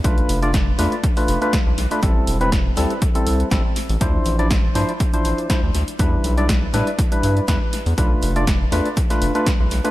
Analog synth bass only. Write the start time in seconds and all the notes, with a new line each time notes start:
0.04 B1
0.29 F1
0.79 E2
1.28 F1
1.66 B1
1.78 B1
2.03 A1
2.27 E1
2.77 D2
3.27 C2
3.51 A1
3.90 A1
4.01 D2
4.26 A1
4.75 G2
5.25 A1
5.63 D2
5.75 D2
5.99 E2
6.24 B1
6.74 A2
7.23 G2
7.48 E2
7.86 E2
7.98 B1
8.23 F1
8.72 E2
9.22 F1
9.60 B1
9.71 B1